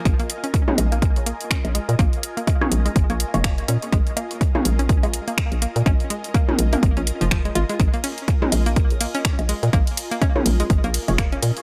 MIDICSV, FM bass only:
0, 0, Header, 1, 2, 480
1, 0, Start_track
1, 0, Tempo, 483871
1, 54, Time_signature, 4, 2, 24, 8
1, 11527, End_track
2, 0, Start_track
2, 0, Title_t, "FM bass"
2, 0, Program_c, 0, 39
2, 54, Note_on_c, 0, 34, 99
2, 147, Note_off_c, 0, 34, 0
2, 774, Note_on_c, 0, 34, 104
2, 1319, Note_off_c, 0, 34, 0
2, 1633, Note_on_c, 0, 34, 88
2, 1781, Note_off_c, 0, 34, 0
2, 1872, Note_on_c, 0, 46, 89
2, 1940, Note_off_c, 0, 46, 0
2, 1974, Note_on_c, 0, 34, 96
2, 2067, Note_off_c, 0, 34, 0
2, 2694, Note_on_c, 0, 34, 104
2, 2867, Note_off_c, 0, 34, 0
2, 2934, Note_on_c, 0, 32, 97
2, 3027, Note_off_c, 0, 32, 0
2, 3074, Note_on_c, 0, 34, 83
2, 3221, Note_off_c, 0, 34, 0
2, 3314, Note_on_c, 0, 29, 110
2, 3601, Note_off_c, 0, 29, 0
2, 3655, Note_on_c, 0, 46, 89
2, 3747, Note_off_c, 0, 46, 0
2, 3893, Note_on_c, 0, 34, 96
2, 3987, Note_off_c, 0, 34, 0
2, 4615, Note_on_c, 0, 34, 101
2, 5160, Note_off_c, 0, 34, 0
2, 5474, Note_on_c, 0, 34, 86
2, 5621, Note_off_c, 0, 34, 0
2, 5714, Note_on_c, 0, 46, 90
2, 5781, Note_off_c, 0, 46, 0
2, 5813, Note_on_c, 0, 34, 94
2, 5907, Note_off_c, 0, 34, 0
2, 6534, Note_on_c, 0, 34, 102
2, 6708, Note_off_c, 0, 34, 0
2, 6773, Note_on_c, 0, 32, 99
2, 6867, Note_off_c, 0, 32, 0
2, 6913, Note_on_c, 0, 34, 85
2, 7061, Note_off_c, 0, 34, 0
2, 7153, Note_on_c, 0, 29, 105
2, 7440, Note_off_c, 0, 29, 0
2, 7494, Note_on_c, 0, 32, 104
2, 7587, Note_off_c, 0, 32, 0
2, 7734, Note_on_c, 0, 34, 97
2, 7827, Note_off_c, 0, 34, 0
2, 8454, Note_on_c, 0, 34, 103
2, 8999, Note_off_c, 0, 34, 0
2, 9314, Note_on_c, 0, 34, 86
2, 9461, Note_off_c, 0, 34, 0
2, 9553, Note_on_c, 0, 46, 92
2, 9620, Note_off_c, 0, 46, 0
2, 9654, Note_on_c, 0, 34, 96
2, 9747, Note_off_c, 0, 34, 0
2, 10374, Note_on_c, 0, 34, 103
2, 10547, Note_off_c, 0, 34, 0
2, 10614, Note_on_c, 0, 32, 104
2, 10707, Note_off_c, 0, 32, 0
2, 10754, Note_on_c, 0, 34, 83
2, 10901, Note_off_c, 0, 34, 0
2, 10994, Note_on_c, 0, 29, 106
2, 11281, Note_off_c, 0, 29, 0
2, 11334, Note_on_c, 0, 46, 91
2, 11427, Note_off_c, 0, 46, 0
2, 11527, End_track
0, 0, End_of_file